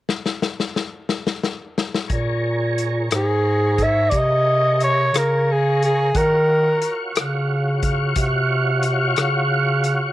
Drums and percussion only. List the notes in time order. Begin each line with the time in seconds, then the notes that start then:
0.09 snare
0.26 snare
0.42 snare
0.60 snare
0.76 snare
1.09 snare
1.27 snare
1.43 snare
1.78 snare
1.95 snare
2.10 kick, closed hi-hat
2.78 closed hi-hat
3.11 cross-stick, closed hi-hat
3.78 kick, closed hi-hat
4.11 kick, closed hi-hat
4.80 closed hi-hat
5.14 cross-stick, closed hi-hat
5.82 closed hi-hat
6.15 kick, closed hi-hat
6.82 closed hi-hat
7.15 cross-stick, closed hi-hat
7.83 kick, closed hi-hat
8.16 kick, closed hi-hat
8.83 closed hi-hat
9.16 cross-stick, closed hi-hat
9.84 closed hi-hat